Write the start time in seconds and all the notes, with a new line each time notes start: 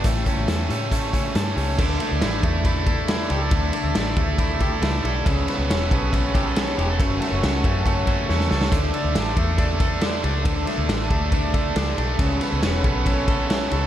0.04 A1 A2 E3 G3 A3 C#4 A4, kick, closed hi-hat
0.26 G3 A3 C#4 A4, kick, closed hi-hat
0.37 A1
0.47 E2 A2 E3 G3 A3 C#4 A4, snare, closed hi-hat
0.70 A2 G3 A3 C#4 A4, closed hi-hat
0.91 G3 A3 C#4 A4, kick, closed hi-hat
1.13 G3 A3 C#4 A4, kick, closed hi-hat
1.35 G2 A2 E3 G3 A3 C#4 A4, snare, closed hi-hat
1.56 C#2 G3 A3 C#4 A4, open hi-hat
1.78 D2 D3 E3 A3 E4 A4 D5 E5 D6, kick, crash
1.99 A3 E4 A4, ride
2.11 D2
2.21 A1 D3 E3 A3 E4 A4, snare, ride
2.43 E2 A3 E4 A4, kick, ride
2.65 E3 A3 E4 A4, kick, ride
2.86 A3 E4 A4, kick, ride
3.08 D3 E3 A3 E4 A4, snare, ride
3.30 C#2 A3 E4 G4 A4, ride
3.41 A4
3.51 D2 D3 E3 A3 E4 A4, kick, ride
3.73 A3 E4 A4, ride
3.84 D2
3.95 A1 D3 E3 A3 D4 E4 A4, snare, ride
4.06 E4
4.16 D2 A3 E4 A4, kick, ride
4.38 E3 A3 E4 A4, kick, ride
4.59 A3 E4 G4 A4, kick, ride
4.72 A4
4.81 C#2 D3 E3 A3 E4 A4, snare, ride
5.03 B1 A3 E4 A4, ride
5.24 C#2 C#3 E3 B3 C#4 A4 C#5 B5, kick, ride
5.47 B3 C#4 A4, snare, ride
5.58 C#2
5.69 E1 C#3 E3 B3 C#4 A4, snare, ride
5.90 B1 B3 C#4 A4, kick, ride
6.12 E3 B3 C#4 A4, kick, ride
6.34 B3 C#4 G4 A4, kick, ride
6.46 A4
6.56 C#3 E3 B3 C#4 A4, snare, ride
6.78 E1 B3 C#4 G4 A4, ride
6.89 A4
6.99 F#1 F#2 C#3 F#3 A3 C#4 A4 F#5 C#6, kick, ride
7.20 F#3 A3 C#4 A4, snare, ride
7.32 F#1
7.42 C#2 F#2 C#3 F#3 A3 C#4 A4, snare, ride
7.64 F#2 F#3 A3 C#4 A4, kick, ride
7.86 F#3 A3 C#4 A4, kick, ride
8.07 F#3 A3 C#4 A4, kick, ride
8.29 E2 F#2 C#3 F#3 A3 C#4 A4, snare
8.40 snare
8.50 C#2 F#3 A3 C#4 A4, snare
8.61 snare
8.71 D2 D3 E3 A3 D4 A4 D5 E5 D6, kick, hi-hat pedal, ride
8.94 A3 D4 A4, ride
9.04 D2
9.14 A1 D3 E3 A3 D4 A4, snare, ride
9.36 E2 A3 D4 A4, kick, ride
9.58 E3 A3 D4 A4, kick, ride
9.80 A3 D4 A4, kick, ride
10.01 D3 E3 A3 D4 A4, snare, ride
10.23 C#2 A3 D4 A4, ride
10.44 D2 D3 E3 A3 D4 A4, kick, ride
10.66 A3 D4 A4, snare, ride
10.78 D2
10.88 A1 D3 E3 A3 D4 A4, snare, ride
11.10 D2 A3 D4 A4, kick, ride
11.32 E3 A3 D4 A4, kick, ride
11.54 A3 D4 A4, kick, ride
11.75 C#2 D3 E3 A3 D4 A4, snare, ride
11.97 B1 A3 D4 A4, ride
12.19 C#2 C#3 E3 B3 C#4 A4 C#5 B5, kick, ride
12.40 B3 C#4 A4, snare, ride
12.52 C#2
12.62 E1 C#3 E3 B3 C#4 A4, snare, ride
12.84 B1 B3 C#4 A4, kick, ride
13.06 E3 B3 C#4 A4, kick, ride
13.28 B3 C#4 A4, kick, ride
13.50 C#3 E3 B3 C#4 A4, snare, ride
13.71 C#2 B3 C#4 A4, ride